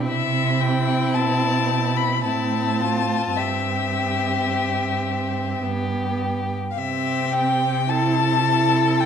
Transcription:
0.09 C3 C4 E4 E5
0.61 G5
1.14 B2 A5
1.97 B5
2.24 A2 C4 E4 A5
2.81 F4
3.36 G2 C4 G4 E5
5.63 G2 B3 G4
6.71 F5
6.78 C3 C4 G4 E5
7.33 G5
7.89 E4 A4 A5
8.47 E4
9.01 G5

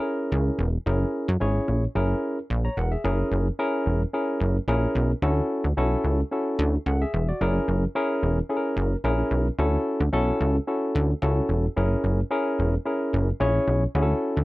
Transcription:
Already playing: C#4 E4 G#4
0.00 A#4
0.32 C#2
0.59 E1
0.86 F#1 C#4 E4 G#4 A#4
1.28 F#2
1.40 G#1 C#4 E4 G#4 C#5
1.68 A#1
1.95 F#1 C#4 E4 G#4 A#4
2.50 A#1
2.65 C#5 A#5
2.77 E1 A#4 F#5
2.92 G#4 E5
3.04 F#1 C#4 E4 G#4 A#4
3.32 F#1
3.59 C#4 E4 G#4 A#4
3.86 E1
4.13 C#4 E4 G#4 A#4
4.40 F#1
4.68 A#1 C#4 E4 G#4 A#4
4.95 B1
5.22 D2 C#4 E4 F#4 A4
5.64 D2
5.77 B1 C#4 E4 F#4 A4
6.04 C#2
6.32 C#4 E4 F#4 A4
6.59 D2
6.86 C#2 A4 F#5
7.02 G#4 E5
7.14 E1
7.29 F#4 D5
7.41 F#1 C#4 E4 G#4 A#4
7.68 F#1
7.95 C#4 E4 G#4 A#4
8.23 E1
8.49 C#4 E4 G#4 A4
8.57 A#4
8.77 F#1
9.04 A#1 C#4 E4 G#4 A#4
9.31 B1
9.58 D2 C#4 E4 F#4 A4
10.00 D2
10.13 B1 C#4 E4 F#4 A4
10.41 C#2
10.67 C#4 E4 F#4 A4
10.95 D2
11.22 C#2 C#4 E4 F#4 A4
11.49 E1
11.76 F#1 C#4 E4 G#4 A#4
12.04 F#1
12.30 C#4 E4 G#4 A#4
12.59 E1
12.86 C#4 E4 G#4 A#4
13.13 F#1
13.40 A#1 C#4 E4 G#4 C#5
13.68 B1
13.95 D2 C#4 E4 F#4 G#4
14.03 A4
14.37 D2

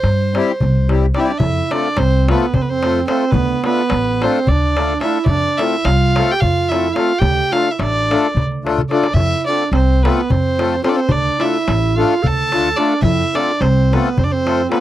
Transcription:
Already playing: C5
0.03 G2, darbuka tek
0.20 darbuka tek
0.33 G3 C4 E4 G4, darbuka tek
0.48 darbuka tek
0.61 C2, darbuka dum
0.89 G3 C4 E4 G4, darbuka tek
1.02 darbuka tek
1.14 G3 C4 D4 E4 G4 D5, darbuka tek
1.20 E4 E5
1.25 D5, darbuka tek
1.29 D4
1.38 F2 E4 E5, darbuka dum
1.57 darbuka tek
1.71 A3 C4 D4 F4 A4 D5, darbuka tek
1.97 C2 C4 C5, darbuka tek
2.28 A3 B3 C4 F4 A4 B4, darbuka tek
2.54 F2 C4 C5, darbuka dum
2.62 B3 B4
2.70 C4 C5
2.83 A3 C4 F4 A4, darbuka tek
3.07 A3 C4 F4 A4 C5, darbuka tek
3.31 D2 B3 B4, darbuka dum
3.48 darbuka tek
3.64 A3 B3 D4 F4 A4 B4, darbuka tek
3.90 A1, darbuka tek
4.21 A3 D4 F4 A4 C5, darbuka tek
4.26 C4
4.47 D2 D4 D5, darbuka dum
4.76 A3 D4 F4 A4, darbuka tek
5.01 A3 D4 E4 F4 A4 E5, darbuka tek
5.26 F2 D5, darbuka dum
5.30 D4
5.57 A3 C4 E4 F4 A4 E5, darbuka tek
5.85 C2 F5, darbuka tek
5.89 F4
6.16 A3 C4 F4 A4, darbuka tek
6.31 G4 G5
6.40 F2 F4 F5, darbuka dum
6.69 A3 C4 E4 F4 E5, darbuka tek
6.73 A4
6.95 A3 C4 F4 A4 F5, darbuka tek
7.18 D2 G4 G5, darbuka dum
7.38 darbuka tek
7.51 A3 D4 F4 A4 F5, darbuka tek
7.71 E4 E5
7.79 A1 D4 D5, darbuka tek
7.96 darbuka tek
8.10 A3 D4 F4 A4, darbuka tek
8.35 D2, darbuka dum
8.52 darbuka tek
8.64 A3 D4 F4 A4, darbuka tek
8.78 darbuka dum
8.89 A3 D4 F4 A4 D5, darbuka tek
9.04 darbuka tek
9.14 F2 E4 E5, darbuka dum
9.32 darbuka tek
9.46 A3 C4 D4 F4 A4 D5
9.72 C2 C4 C5, darbuka tek
10.03 A3 B3 C4 F4 A4 B4, darbuka tek
10.30 F2 C4 C5, darbuka dum
10.59 A3 C4 F4 A4, darbuka tek
10.83 A3 C4 F4 A4 C5, darbuka tek
10.89 D4 D5
10.96 C4 C5
11.08 D2 D4 D5, darbuka dum
11.39 A3 D4 E4 F4 A4 E5, darbuka tek
11.68 A1, darbuka tek
11.96 A3 D4 F4 A4 F5
12.22 D2 A4, darbuka dum
12.26 A5
12.52 A3 D4 F4 A4, darbuka tek
12.76 A3 D4 F4 A4 D5, darbuka tek
13.02 F2 E4 E5, darbuka dum
13.33 A3 C4 D4 F4 A4 D5, darbuka tek
13.61 C2 C4 C5, darbuka tek
13.92 A3 B3 C4 F4 A4 B4, darbuka tek
14.18 F2 C4 C5, darbuka dum
14.24 D4 D5
14.31 C4 C5
14.46 A3 C4 F4 A4, darbuka tek
14.69 A3 B3 C4 F4 A4 B4, darbuka tek

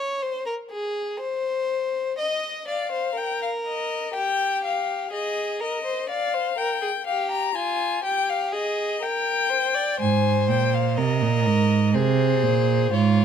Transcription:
Already playing: C#5
0.22 C5
0.46 A#4
0.71 G#4
1.20 C5
2.18 D#5
2.67 D5 F5
2.92 C5
3.16 A#4 G5
3.42 F5
3.67 D#5
4.14 G4 G5
4.64 F5
5.11 G#4 D#5
5.61 A#4 D#5
5.85 C5
6.09 D5 F5
6.34 C5
6.58 A#4 G5
6.82 G#4
7.06 G4 F5
7.31 A#5
7.55 F4 G#5
8.04 G4 G5
8.30 F5
8.52 G#4 D#5
9.02 A#4 G5
9.50 C5
9.75 D5
10.00 G#2 C5 G#5
10.49 A#2 G5
10.74 F5
10.97 C3 A#4 D#5
11.21 A#2
11.46 G#2
11.94 C3 G#4 C5
12.43 A#2
12.92 G#2 F4 C#5

